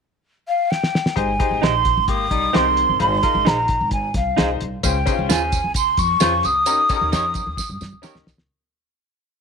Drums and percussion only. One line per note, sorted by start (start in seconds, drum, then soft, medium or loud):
0.72 snare medium
0.84 snare medium
0.95 snare medium
1.06 snare medium
1.17 kick medium
1.17 closed hi-hat medium
1.40 kick loud
1.40 closed hi-hat medium
1.63 snare medium
1.63 closed hi-hat medium
1.85 kick medium
1.85 closed hi-hat medium
2.08 kick medium
2.08 closed hi-hat medium
2.31 kick medium
2.31 closed hi-hat medium
2.54 snare loud
2.54 closed hi-hat medium
2.77 closed hi-hat medium
3.00 closed hi-hat medium
3.23 kick medium
3.23 closed hi-hat medium
3.46 snare loud
3.46 closed hi-hat medium
3.68 kick medium
3.68 closed hi-hat medium
3.91 kick medium
3.91 closed hi-hat medium
4.14 kick medium
4.14 snare soft
4.14 closed hi-hat medium
4.38 snare loud
4.38 closed hi-hat medium
4.61 closed hi-hat medium
4.83 kick medium
4.83 closed hi-hat medium
4.83 tambourine medium
5.07 kick loud
5.07 closed hi-hat medium
5.07 tambourine soft
5.30 snare loud
5.30 closed hi-hat medium
5.30 tambourine medium
5.52 kick medium
5.52 closed hi-hat medium
5.52 tambourine medium
5.74 kick medium
5.74 closed hi-hat medium
5.74 tambourine loud
5.97 kick medium
5.97 closed hi-hat medium
5.97 tambourine soft
6.20 snare loud
6.20 closed hi-hat medium
6.20 tambourine medium
6.43 closed hi-hat medium
6.43 tambourine soft
6.66 closed hi-hat medium
6.66 tambourine medium
6.89 kick loud
6.89 closed hi-hat medium
6.89 tambourine soft
7.12 snare medium
7.12 closed hi-hat medium
7.12 tambourine medium
7.34 kick medium
7.34 closed hi-hat medium
7.34 tambourine medium
7.57 kick medium
7.57 snare soft
7.57 tambourine loud
7.81 snare medium
7.81 tambourine soft
8.03 snare medium
8.03 tambourine medium
8.15 snare medium
8.27 snare loud
8.27 tambourine soft
8.38 snare medium